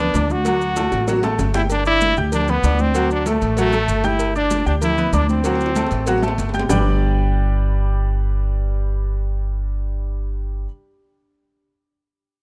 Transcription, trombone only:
0.00 0.33 D4 loud
0.32 1.40 F#4 loud
1.56 1.63 E4 loud
1.72 1.86 D4 loud
1.87 2.15 E4 loud
2.34 2.51 D4 loud
2.50 2.83 B3 loud
2.81 3.12 C4 loud
3.12 3.26 D4 loud
3.28 3.56 A3 medium
3.59 4.08 A3 loud
4.06 4.37 E4 loud
4.37 4.65 D4 loud
4.68 4.75 D4 loud
4.83 5.16 E4 loud
5.15 5.30 D4 loud
5.30 6.35 C4 loud

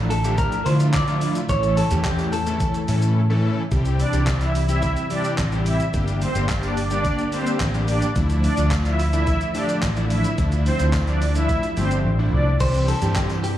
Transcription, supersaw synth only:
3.99 4.11 D4 medium
3.99 4.11 D5 medium
4.41 4.53 E4 medium
4.41 4.52 E5 medium
4.69 4.92 E4 medium
4.69 4.91 E5 medium
5.11 5.22 D4 medium
5.11 5.22 D5 medium
5.66 5.78 E4 medium
5.66 5.77 E5 medium
6.21 6.33 C4 medium
6.21 6.33 C5 loud
6.63 6.75 D4 medium
6.63 6.74 D5 medium
6.91 7.14 D4 medium
6.91 7.13 D5 medium
7.33 7.44 C4 medium
7.33 7.44 C5 medium
7.88 8.00 D4 medium
7.88 8.00 D5 medium
8.44 8.56 D4 medium
8.44 8.55 D5 medium
8.86 8.97 E4 medium
8.86 8.97 E5 medium
9.13 9.36 E4 medium
9.13 9.36 E5 medium
9.55 9.67 D4 medium
9.55 9.66 D5 medium
10.11 10.22 E4 medium
10.11 10.22 E5 medium
10.66 10.78 C4 medium
10.66 10.77 C5 loud
11.08 11.19 D4 medium
11.08 11.19 D5 medium
11.36 11.58 E4 medium
11.36 11.58 E5 medium
11.77 11.89 C4 medium
11.77 11.88 C5 medium
12.33 12.44 D4 medium
12.33 12.44 D5 medium

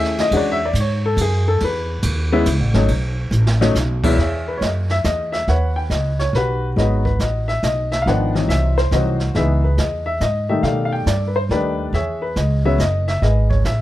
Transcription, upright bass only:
0.00 0.31 D#2 medium
0.31 0.73 E2 medium
0.73 1.16 G#2 medium
1.17 1.59 F#2 loud
1.61 2.02 E2 loud
2.03 2.45 D#2 loud
2.46 2.60 C#2 medium
2.60 2.73 A1 medium
2.74 2.88 G#1 medium
2.89 3.30 B1 medium
3.31 3.73 A1 loud
3.75 4.17 B1 loud
4.17 4.60 E2 medium
4.61 5.03 F#2 medium
5.04 5.46 E2 medium
5.48 5.89 D#2 medium
5.90 6.32 C#2 medium
6.33 6.75 B1 medium
6.76 7.18 G#1 medium
7.19 7.61 A1 medium
7.63 8.04 B1 medium
8.06 8.48 G#1 medium
8.48 8.90 C2 medium
8.91 9.33 C2 medium
9.35 9.76 C#2 medium
9.78 10.19 E2 medium
10.20 10.62 G#2 medium
10.63 11.05 B2 medium
11.06 11.48 G2 medium
11.49 11.91 D#2 medium
11.93 12.34 E2 medium
12.36 12.78 C#2 medium
12.78 13.20 F#1 medium
13.22 13.64 G#1 medium
13.65 13.81 A1 medium

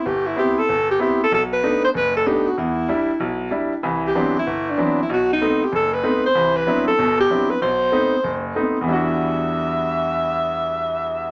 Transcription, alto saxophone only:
0.07 0.28 G4 medium
0.26 0.37 E4 medium
0.39 0.60 G4 medium
0.59 0.89 A4 medium
0.91 1.00 G4 medium
1.02 1.19 G4 medium
1.23 1.32 A4 medium
1.34 1.42 A4 medium
1.53 1.81 B4 loud
1.84 1.89 C5 medium
1.97 2.14 B4 loud
2.17 2.29 A4 loud
2.27 2.49 G4 medium
2.47 2.58 F#4 medium
2.59 3.48 E4 medium
4.07 4.34 G4 medium
4.39 4.72 E4 medium
4.70 4.99 D4 medium
5.02 5.10 E4 medium
5.13 5.29 F#4 medium
5.33 5.66 D#4 medium
5.64 5.73 G4 medium
5.75 5.95 A4 medium
5.93 6.24 B4 loud
6.26 6.58 C5 loud
6.56 6.87 B4 loud
6.88 7.16 A4 medium
7.20 7.52 G4 loud
7.50 7.61 B4 medium
7.62 8.52 C5 medium
8.88 11.31 E5 medium

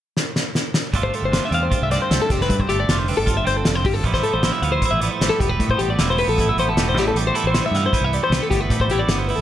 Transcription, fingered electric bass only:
0.94 1.09 G1 medium
1.22 1.38 G1 medium
1.51 1.67 E2 medium
1.81 1.97 C2 medium
2.11 2.18 C2 medium
2.30 2.46 F1 medium
2.49 2.65 G2 medium
2.68 2.84 G1 medium
2.89 3.12 F1 medium
3.18 3.41 G1 medium
3.47 3.62 G1 medium
3.67 3.84 F1 medium
3.84 4.00 G1 medium
4.04 4.20 A1 medium
4.34 4.49 A1 medium
4.62 4.78 D2 medium
4.92 5.08 A1 medium
5.21 5.29 A1 medium
5.40 5.56 E1 medium
5.59 5.75 A2 medium
5.80 5.95 A1 medium
5.99 6.22 E1 medium
6.27 6.51 A1 medium
6.57 6.73 A1 medium
6.76 6.94 E1 medium
6.94 7.10 A1 medium
7.14 7.30 A1 medium
7.44 7.60 A1 medium
7.71 7.88 G2 medium
8.01 8.17 C2 medium
8.30 8.38 C2 medium
8.51 8.67 G1 medium
8.70 8.86 A2 medium
8.88 9.04 A1 medium
9.08 9.32 G1 medium
9.38 9.41 A1 medium

